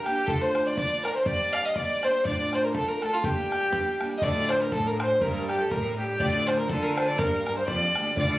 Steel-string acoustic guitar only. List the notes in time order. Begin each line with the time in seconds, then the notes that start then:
0.06 G3 A#3 D4 G4
0.26 D2 A2 D3 A3 D4 F4
0.75 D3 A3 D4 F4
1.04 D3 A3 D4 F4
1.25 G3 A#3 D4 G4
1.74 G3 A#3 D4 G4
2.03 G3 A#3 D4 G4
2.24 D2 A2 D3 A3 D4 F4
2.73 D3 A3 D4 F4
3.00 D3 A3 D4 F4
3.23 G3 A#3 D4 G4
3.72 G3 A#3 D4 G4
4.01 G3 A#3 D4 G4
4.22 D2 A2 D3 A3 D4 F4
4.72 D3 A3 D4 F4
5.20 G3 A#3 D4 G4
5.70 G3 D4 G4
6.19 D2 A2 D3 A3 D4 F4
6.70 D3 A3 D4 F4
7.19 G3 A#3 D4 G4
7.67 G3 A#3 D4 G4
7.96 G3 A#3 D4 G4
8.16 D2 A2 D3 A3 D4 F4